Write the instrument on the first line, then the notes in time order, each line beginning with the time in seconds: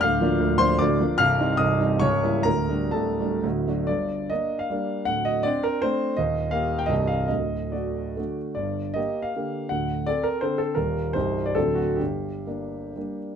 grand piano
0.01 D1 D2 F5 F6
0.21 F3 A#3 D4
0.40 D1 D2
0.58 F3 A#3 D4 C5 C6
0.79 D1 D2 D5 D6
1.01 F3 A#3 D4
1.18 C1 C2 F5 F6
1.40 G3 C4 D#4
1.57 C1 C2 D#5 D#6
1.80 G3 C4 D#4
2.00 C#1 C#2 C#5 C#6
2.23 G3 A#3 E4
2.43 D1 D2 A#4 A#5
2.69 G3 A3 D4
2.91 D1 D2 A4 A5
3.20 G3 A3 D4
3.43 D1 D2
3.68 F#3 A3 D4
3.87 G1 G2 D5
4.30 A#3 D4 D#5
4.59 F5
4.70 G3 A#3 D4
5.05 D1 D2 F#5
5.25 D#5
5.43 C4 D4 D5
5.63 A#4
5.82 A3 C4 D4 C5
6.17 D#1 D#2 D#5
6.51 A#3 G4 F5
6.79 G5
6.86 C1 C2 G3 C4 G4 D#5
7.07 F5
7.28 D1 D2 D#5
7.72 A3 F#4 D5
8.16 D3 A3 F#4
8.55 G1 G2 D5
8.94 A#3 G4 D#5
9.22 F5
9.36 D3 A#3 G4
9.69 D1 D2 F#5
10.06 C4 A4 D5
10.23 A#4
10.41 D3 C4 A4 C5
10.58 A4
10.75 D#1 D#2 G3 A#3 G4 A#4
11.13 C1 C2 G3 D#4 G4 C5
11.46 D5
11.55 D1 D2 F#3 C4 D4 A4
11.75 F#4
11.97 G1 G2 G4
12.47 A#3 D4
12.96 G3 A#3 D4